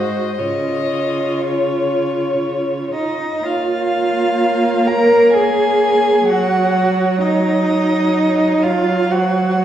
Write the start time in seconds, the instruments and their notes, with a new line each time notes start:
Already playing: cello G#2, viola F#4, violin C5 D#5
0.37 cello C#3, viola F4, violin C#5 D#5
1.42 violin C#5
2.94 cello D#4, violin D#5
3.43 viola A#3, cello F4, violin C#5 F5
4.87 cello A#4, violin A#5
5.33 cello G#4, violin G#5
6.29 viola F#3, cello F#4, violin F#5
7.21 cello D#4, violin D#5
8.63 cello F4, violin F5
9.11 cello F#4, violin C5 F#5